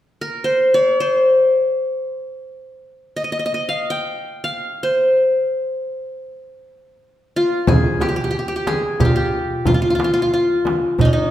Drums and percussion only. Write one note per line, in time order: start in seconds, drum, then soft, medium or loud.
7.67 frame drum loud
7.67 darbuka dum medium
8.01 darbuka tek medium
8.01 frame drum medium
8.67 darbuka tek medium
8.67 frame drum medium
9.00 frame drum medium
9.00 darbuka dum medium
9.34 darbuka ka soft
9.50 darbuka ka soft
9.65 frame drum medium
9.65 darbuka dum medium
9.99 darbuka tek medium
9.99 frame drum soft
10.65 darbuka tek medium
10.65 frame drum medium
10.99 frame drum medium
10.99 darbuka dum medium